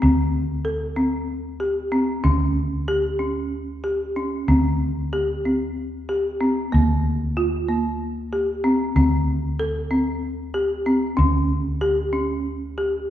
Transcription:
0.02 D2 C4
0.65 A4
0.96 C4
1.60 G4
1.92 C4
2.24 D2 C#4
2.88 G4
3.19 C#4
3.84 G4
4.16 C#4
4.48 D2 C4
5.13 G4
5.45 C4
6.09 G4
6.41 C4
6.72 D2 A#3
7.37 F4
7.68 A#3
8.33 G4
8.64 C4
8.96 D2 C4
9.60 A4
9.91 C4
10.54 G4
10.86 C4
11.17 D2 C#4
11.81 G4
12.13 C#4
12.78 G4

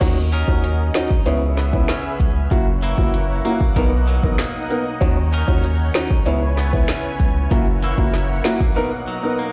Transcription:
0.01 D#2 D#3 C#4 D#4 F#4 A#4 D#5, kick, closed hi-hat, crash
0.32 C#4 D#4 A#4, closed hi-hat
0.48 D#2 C#4 D#4 F#4, kick
0.64 closed hi-hat
0.94 C#4 D#4 F#4, finger snap, snare, closed hi-hat
1.11 kick
1.26 C#2 C#3 B3 C#4 E4 G#4 B4 E5, closed hi-hat
1.57 B3, snare, closed hi-hat
1.73 B3 C#4 E4, kick
1.88 C#4, finger snap, snare, closed hi-hat
2.20 C#2, kick, closed hi-hat
2.51 F#1 F#2 A#3 E4 F#4 A#4 C#5 F#5, kick, closed hi-hat
2.82 E3 A#3 E4, closed hi-hat
2.98 F#1 A#3 E4 F#4, kick
3.14 closed hi-hat
3.45 A#3 E4 F#4, closed hi-hat
3.61 kick
3.76 B1 B2 B3 D#4 A#4 D#5, kick, closed hi-hat
4.07 F#3, closed hi-hat
4.23 A#1 B3 D#4 A#4, kick
4.38 A#3, finger snap, snare, closed hi-hat
4.70 B3 D#4 A#4, closed hi-hat
5.01 D#2 D#3 C#4 D#4 F#4 C#5, kick, closed hi-hat
5.33 C#4 D#4 A#4, closed hi-hat
5.48 D#2 C#4 D#4 F#4, kick
5.64 closed hi-hat
5.94 C#4 D#4 F#4, finger snap, snare, closed hi-hat
6.11 kick
6.26 C#2 C#3 B3 C#4 E4 B4 C#5 G#5, closed hi-hat
6.57 B3, snare, closed hi-hat
6.73 B3 C#4 E4, kick
6.88 C#4, finger snap, snare, closed hi-hat
7.20 C#2, kick, closed hi-hat
7.51 F#1 F#2 A#3 E4 F#4 A#4 C#5 F#5, kick, closed hi-hat
7.82 E3 A#3 E4, closed hi-hat
7.98 F#1 A#3 E4 F#4, kick
8.14 snare, closed hi-hat
8.44 A#3 E4 F#4, finger snap, snare, closed hi-hat
8.61 kick
8.76 B2 B3 D#4 A#4 D#5
9.08 F#3
9.23 B3 D#4 A#4
9.39 A#3

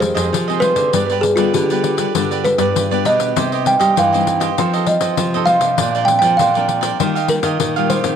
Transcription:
Already playing: F2
0.00 D#3 G#3 C4 C5, muted cavaquinho stroke, pandeiro
0.14 F2 G#4 C5 D#5, pandeiro
0.32 C3 F3, pandeiro
0.48 D#3 G#3 C4 G#4 C5 D#5, pandeiro
0.60 F4 G#4 B4 C5 D#5, pandeiro
0.76 D3, pandeiro
0.93 G2 G3 B3 D4 G4 B4 D5, pandeiro
1.10 G4 B4 D5, pandeiro
1.21 G#4, muted cavaquinho stroke, pandeiro
1.36 D3 G3 B3 D4 F4 G4 B4 D5, pandeiro
1.54 D3 D4 G4 B4 D5, pandeiro
1.70 G3 B3 D4 G4 B4 D5, pandeiro
1.84 pandeiro
1.97 G3 B3 D4 G4 B4 D5, pandeiro
2.15 G2 D3 G3 B3 D4 G4 B4 D5, pandeiro
2.31 G4 B4 D5, pandeiro
2.44 B4, muted cavaquinho stroke, pandeiro
2.58 G2 G3 B3 D4 G4 B4 D5, pandeiro
2.76 G2 D3, pandeiro
2.91 G3 B3 D4 G4 B4 D5, pandeiro
3.05 B2 D4 G4 B4 D5 D#5, pandeiro
3.20 pandeiro
3.36 C3 G3 C4 D#4 G4 C5 D#5, pandeiro
3.52 G4 C5 D#5, pandeiro
3.65 G3 C4 D#4 G5, muted cavaquinho stroke, pandeiro
3.79 G3 G4 C5 D#5 G5, pandeiro
3.96 G2 E3 D#4 G4 C5 D#5 F5, pandeiro
4.13 G3 C4 D#4 G4 C5 D#5, pandeiro
4.27 pandeiro
4.40 G4 C5 D#5, pandeiro
4.58 F3 C4 D#4 F4 A4 C5 D#5, pandeiro
4.73 A4 C5 D#5, pandeiro
4.87 C4 D#4 A4 D#5, muted cavaquinho stroke, pandeiro
5.01 F3 A4 C5 D#5, pandeiro
5.17 C3 F3, pandeiro
5.34 C4 D#4 A4 C5 D#5, pandeiro
5.46 F4 A4 C5 D#5 F5, pandeiro
5.61 C3 F3 C4 D4, pandeiro
5.78 A#2 D4 A#4 C5 D5, pandeiro
5.95 A#4 C5 D5, pandeiro
6.05 F3 C4 G5, muted cavaquinho stroke, pandeiro
6.09 D4
6.19 F3 D5 G5, pandeiro
6.24 A#4 C5
6.37 A#2 F3 D4 A#4 C5 D5 F5, pandeiro
6.54 F3 C4 D4 A#4 C5 D5, pandeiro
6.69 pandeiro
6.81 A#4 C5 D5, pandeiro
6.99 D#3 G3 A#3 F4 G4 D#5 F5, pandeiro
7.15 G4 D#5 F5, pandeiro
7.28 G3 A#3 F4 A#4, muted cavaquinho stroke, pandeiro
7.43 D#3 G4 D#5 F5, pandeiro
7.60 A#2 D#3, pandeiro
7.76 G3 A#3 F4 G4 D#5 F5, pandeiro
7.90 F4 G4 C5 D#5 F5, pandeiro
8.04 D#3 F3 C4 D#4, pandeiro

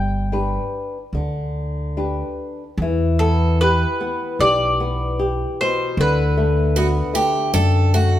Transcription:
Already playing: G1 G3 G5
0.32 D4 G4 B4
1.13 D2 D3
1.97 D4 G4 B4
2.77 E2
2.82 E3
3.19 B3 A4
3.61 G4 B4
4.00 B3
4.39 B1 G4 D5
4.80 B3
5.19 G4
5.61 B2 C5
5.97 D2 D3 B4
6.37 A3
6.76 B3 F#4
7.14 A3 G4
7.53 F#2 D4 A4
7.94 A3 F#4

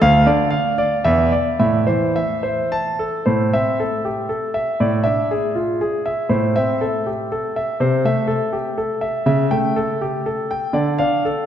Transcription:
0.01 D2 F5
0.26 D3 D5
0.50 F5
0.78 D5
1.04 E2 E5
1.32 D5
1.59 A2 E5
1.87 E3 C5
2.16 E5
2.43 C5
2.72 A5
2.99 A4
3.26 A2 C5
3.53 C4 E5
3.80 A4
4.05 G4
4.29 A4
4.54 E5
4.80 A2 D5
5.04 D4 E5
5.31 G#4
5.55 F4
5.81 G#4
6.06 E5
6.29 A2 C5
6.56 C4 E5
6.81 A4
7.06 G4
7.32 A4
7.56 E5
7.80 C3 C5
8.05 A3 E5
8.28 A4
8.53 G4
8.78 A4
9.01 E5
9.26 C#3 E5
9.51 A3 G5
9.76 A4
10.01 G4
10.26 A4
10.51 G5
10.73 D3 D5
10.98 D4 F5
11.25 A4

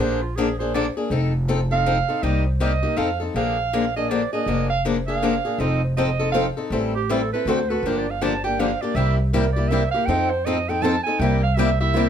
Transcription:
Already playing: A#1
0.00 D3 F3 A#3 D4 G#4 C5
0.22 F4
0.36 D3 F3 A#3 D4 G#4
0.59 A#3 D4 G#4 C5
0.74 D3 F3 A#3 D4 G#4 D5
0.97 A#3 D4 G#4
1.10 F1 F3 C4 D#4 A4
1.48 F3 C4 D#4 A4
1.71 C4 D#4 A4 F5
1.86 F3 C4 D#4 A4
2.09 C4 D#4 A4
2.23 C2 C3 G3 A#3 D#4 G4 D#5
2.46 C5
2.60 C3 G3 A#3 D#4 G4 D#5
2.83 A#3 D#4 G4
2.97 F2 F3 C4 D#4 A4 F5
3.20 C4 D#4 A4
3.34 A#1 D3 F3 A#3 D4 G#4 F5
3.73 D3 F3 A#3 D4 G#4
3.96 A#3 D4 G#4 D#5
4.09 D3 F3 A#3 D4 G#4 D5
4.33 A#3 D4 G#4 D#5
4.46 F1 D3 F3 A#3 D4 G#4
4.70 F5
4.85 D3 F3 A#3 D4 G#4
5.07 A#3 D4 G#4 F5
5.22 D3 F3 A#3 D4 G#4
5.45 A#3 D4 G#4
5.58 F1 F3 C4 D#4 A4 D#5
5.84 C5
5.97 F3 C4 D#4 A4 D#5
6.19 C4 D#4 A4
6.32 F3 C4 D#4 A4 F5
6.57 C4 D#4 A4
6.70 A1 E3 G3 C4 E4 A4
6.95 G4
7.09 E3 G3 C4 E4 A4
7.33 C4 E4 A4 B4
7.45 D2 D3 A3 C4 F#4 A4 C5
7.69 C4 F#4 A4 B4
7.83 G1 D3 F3 A#3 D4
7.87 G4 A#4
7.98 D5
8.11 F5
8.21 D3 F3 A#3 D4 G4 A5
8.44 A#3 D4 G4 G5
8.59 D3 F3 A#3 D4 G4 F5
8.81 A#3 D4 G4 D5
8.95 C2 C3 G3 A#3 E4 G4 E5
9.18 G4
9.33 C3 G3 A#3 E4 G4 A#4
9.53 G4 D5
9.57 A#3 E4
9.68 C3 G3 A#3 E5
9.72 E4 G4
9.91 G4 F5
9.95 A#3 E4
10.06 F2 F3 C4 D#4 A4 G5
10.30 C5
10.45 F3 C4 D#4 A4 D#5
10.69 C4 D#4 A4 G5
10.82 F3 C4 D#4 A4 A5
11.04 A4 G#5
11.08 C4 D#4
11.19 C2 C3 G3 A#3 E4 G4 G5
11.43 F5
11.56 C3 G3 A#3 E4 G4 E5
11.80 A#3 E4 G4 E5
11.96 C3 G3 A#3 E4 G4

